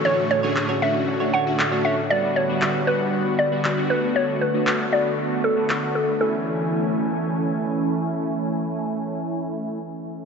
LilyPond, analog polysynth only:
\new Staff \with { instrumentName = "Analog polysynth" } { \time 4/4 \key a \major \tempo 4 = 117 <a cis' d' fis'>8 r16 <a cis' d' gis'>8 r16 <a cis' d' fis'>4 r16 <a cis' d' fis'>8 <a cis' d' fis'>8 r16 | <g b d' fis'>8 r16 <g b d' fis'>8 r16 <g b d' fis'>4 r16 <g b d' fis'>8 <g b d' fis'>16 <a b d' fis'>8~ | <a b d' fis'>8 r16 <a b d' fis'>8 r16 <a b d' fis'>4 r16 <a b d' fis'>8 <a b d' fis'>8 r16 | <a cis' e' gis''>1~ |
<a cis' e' gis''>1 | }